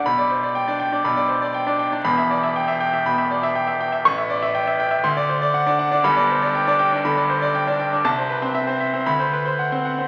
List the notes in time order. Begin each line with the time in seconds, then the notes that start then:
0.06 B1 B5
0.18 D5
0.30 C5
0.43 D5
0.55 G5
0.68 D4 D5
0.80 G5
0.92 D4 D5
1.04 B1 B5
1.17 D5
1.29 C5
1.42 D5
1.54 G5
1.66 D4 D5
1.79 G5
1.92 D4 D5
2.04 E1 E2 B5
2.18 E5
2.30 D5
2.43 E5
2.56 G5
2.68 E5
2.80 G5
2.93 E5
3.06 B2 B5
3.18 E5
3.31 D5
3.43 E5
3.55 G5
3.68 E5
3.81 G5
3.92 E5
4.05 A1 C#6
4.18 E5
4.30 D5
4.42 E5
4.55 G5
4.67 E5
4.79 G5
4.91 E5
5.04 D2 C6
5.17 D5
5.29 C5
5.42 D5
5.54 F#5
5.66 D4 D5
5.79 F#5
5.91 D4 D5
6.03 G1 G2 B5
6.17 D5
6.30 C5
6.42 D5
6.55 G5
6.67 D4 D5
6.79 G5
6.92 D4 D5
7.05 D3 B5
7.17 D5
7.29 C5
7.42 D5
7.55 G5
7.67 D4 D5
7.80 G5
7.93 D4 D5
8.05 C2 A5
8.18 C5
8.30 B4
8.42 C4 C5
8.55 E5
8.67 C4 C5
8.80 E5
8.94 C4 C5
9.06 D2 B5
9.20 C5
9.33 B4
9.46 C5
9.59 F#5
9.72 C4 C5
9.85 F#5
9.99 C4 C5